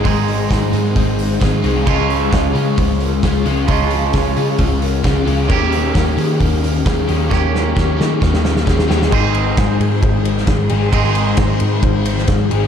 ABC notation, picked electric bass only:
X:1
M:4/4
L:1/8
Q:1/4=132
K:Ab
V:1 name="Picked electric bass" clef=bass
A,,,2 A,,, A,, A,,,2 A,,, C,, | D,,2 D,, D, D,,2 D,, D,, | D,,2 D,, D, D,,2 D,, D,, | E,,2 E,, E, E,,2 E,, E,, |
E,,2 E,, E, E,,2 E,, E,, | A,,,2 A,,, A,, A,,,2 A,,, A,,, | A,,,2 A,,, A,, A,,,2 A,,, A,,, |]